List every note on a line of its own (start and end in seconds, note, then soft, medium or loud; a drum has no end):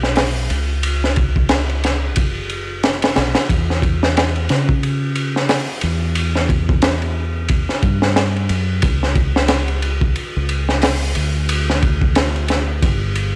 0.00 0.48 B1 medium
0.00 snare soft
0.15 snare medium
0.15 open hi-hat medium
0.50 2.18 C#2 medium
0.50 ride medium
0.83 ride medium
1.04 snare soft
1.16 kick medium
1.16 ride medium
1.36 kick loud
1.49 snare loud
1.49 ride medium
1.69 ride soft
1.84 snare soft
1.84 ride medium
2.16 3.14 F#1 medium
2.16 kick loud
2.16 ride medium
2.50 ride medium
2.83 snare medium
2.83 ride medium
3.02 snare loud
3.02 ride medium
3.16 3.34 B1 medium
3.16 snare loud
3.16 ride medium
3.35 snare medium
3.35 ride medium
3.49 4.47 E2 medium
3.49 kick loud
3.49 ride medium
3.70 snare soft
3.82 kick medium
3.82 ride medium
4.03 snare medium
4.17 snare loud
4.17 ride medium
4.36 ride soft
4.49 5.66 C#3 medium
4.49 snare soft
4.49 ride medium
4.69 kick medium
4.83 ride medium
5.15 ride medium
5.36 snare soft
5.49 snare loud
5.49 open hi-hat medium
5.81 7.66 E2 medium
5.81 ride medium
6.15 ride medium
6.35 snare soft
6.49 kick medium
6.49 ride medium
6.69 kick loud
6.82 snare loud
6.82 ride medium
7.02 ride soft
7.49 kick medium
7.49 ride medium
7.69 snare soft
7.83 8.47 G2 medium
7.83 kick medium
7.83 ride medium
8.02 snare medium
8.16 snare loud
8.16 ride medium
8.36 ride soft
8.49 8.80 F#2 medium
8.49 ride medium
8.82 10.14 C#2 medium
8.82 kick loud
8.82 ride medium
9.03 snare soft
9.15 kick medium
9.15 ride medium
9.36 snare medium
9.48 snare loud
9.48 ride medium
9.68 ride soft
9.82 ride medium
10.01 kick medium
10.16 ride medium
10.37 11.14 C#2 medium
10.49 ride medium
10.69 snare soft
10.82 snare loud
10.82 open hi-hat medium
11.15 12.85 D2 medium
11.15 ride medium
11.49 ride medium
11.70 snare soft
11.82 kick medium
11.82 ride medium
12.01 kick loud
12.15 snare loud
12.15 ride medium
12.36 ride soft
12.48 snare soft
12.48 ride medium
12.82 13.36 G1 loud
12.82 kick loud
12.82 ride medium
13.15 ride medium